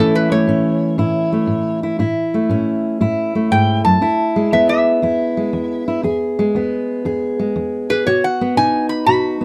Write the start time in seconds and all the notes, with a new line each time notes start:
Already playing: A2 E3
0.00 A3 C#4 E4 A4
0.15 B4
0.32 A3 C#5
0.47 A2 C#4
0.98 A2 E4
1.32 A3
1.47 A2
1.83 E4
1.99 A2 E4
2.34 A3
2.49 A2 C#4
3.01 A2 E4
3.35 A3
3.51 G#2 G5
3.85 F#2 A5
4.01 E2 E4
4.36 G#3
4.52 E2 B3 E5
4.69 E5
5.02 E2 E4
5.37 G#3
5.53 E2
5.88 E4
6.03 E2 G#4
6.39 G#3
6.55 E2 B3
7.05 E2 G#4
7.39 G#3
7.56 E2
7.90 G#4 B4
8.06 B2 F#4 C#5
8.24 F#5
8.41 B3
8.57 B2 D#4 G#5
8.89 B5
9.06 B2 F#4 B5
9.41 B3